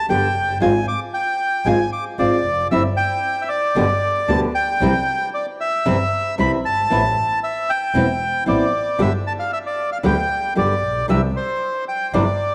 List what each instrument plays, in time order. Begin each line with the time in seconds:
0.09 double bass G1, nylon-string guitar D3 G3 B3 G4, bandoneon G5
0.35 double bass F#1
0.60 double bass G#1, nylon-string guitar G#3 C4 F4, bandoneon G#5
0.88 bandoneon D6
1.14 bandoneon G5
1.66 double bass G#1, nylon-string guitar G#3 C4 F4, bandoneon G#5
1.93 bandoneon D6
2.18 double bass G#1, nylon-string guitar G#3 C4 F4, bandoneon D5
2.46 double bass F1
2.71 double bass G1, nylon-string guitar G3 C4 E4, bandoneon E5
2.97 bandoneon G5
3.42 bandoneon E5
3.49 bandoneon D5
3.76 double bass G1, nylon-string guitar B2 D3 G3 B3 G4
4.28 double bass D2, nylon-string guitar B2 D3 G3 B3 G4, bandoneon A5
4.55 bandoneon G5
4.81 double bass C2, nylon-string guitar C3 E3 G3 C4 E4
5.34 bandoneon D5
5.61 bandoneon E5
5.86 double bass G1, nylon-string guitar C3 E3 G3 C4 E4
6.38 double bass C2, nylon-string guitar C3 E3 G3 C4 E4, bandoneon B5
6.65 double bass G1, bandoneon A5
6.90 double bass A1, nylon-string guitar E3 B3 C4 E4
7.44 bandoneon E5
7.70 bandoneon G5
7.95 double bass E1, nylon-string guitar E3 B3 C4 E4
8.46 double bass A1, nylon-string guitar E3 B3 C4 E4, bandoneon D5
8.99 double bass G1, nylon-string guitar D3 G3 B3 G4, bandoneon E5
9.27 bandoneon A5
9.39 bandoneon F5
9.53 bandoneon E5
9.66 bandoneon D5
9.92 bandoneon F5
10.03 double bass D2, nylon-string guitar D3 G3 B3 G4, bandoneon G5
10.55 double bass G1, nylon-string guitar D3 G3 B3 G4, bandoneon D5
10.82 double bass A#1
11.08 double bass C2, nylon-string guitar C3 E3 G3 D4 E4, bandoneon E5
11.36 bandoneon C5
11.88 bandoneon G5
12.13 double bass G1, nylon-string guitar C3 E3 G3 D4 E4, bandoneon D5